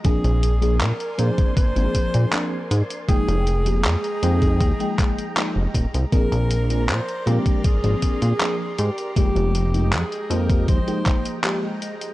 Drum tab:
HH |xxxxxxxxxxxxx-xx|xxxxxxxxxxxxx-xx|xxxxxxxxxxxxx-xx|xxxxxxxxxxxxx-xx|
CP |----x-------x---|----x-----x-x---|----x-------x---|----x-----x-x---|
BD |o------oo-o-----|o------oo-o---o-|o------oo-o-----|o------oo-o-----|